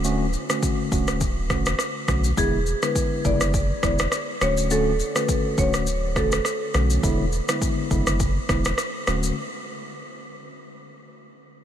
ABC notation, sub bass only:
X:1
M:4/4
L:1/16
Q:"Swing 16ths" 1/4=103
K:Dlyd
V:1 name="Sub bass" clef=bass
D,,,3 z3 D,,,4 E,,,2 z2 B,,,2 | E,,,3 z3 F,,,4 E,,,2 z2 D,,,2- | D,,,3 z3 D,,,4 E,,,2 z2 B,,,2 | E,,,3 z3 F,,,4 E,,,2 z2 D,,,2 |
z16 |]